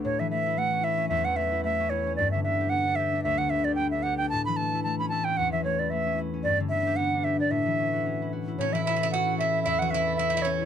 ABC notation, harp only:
X:1
M:4/4
L:1/8
Q:"Swing" 1/4=225
K:Amix
V:1 name="Harp"
A,, E, A, E A, C E C | E,, E, A, E A, C E C | G,, D, B, G B, D G D | D,, D, B, G B, D G D |
A,, E, A, E A, C E C | E,, E, A, E A, C E C | G,, D, B, G B, D G D | A,, E, C F C E F E |
A,, E, C A C E A E | E,, E, C A C E A E |]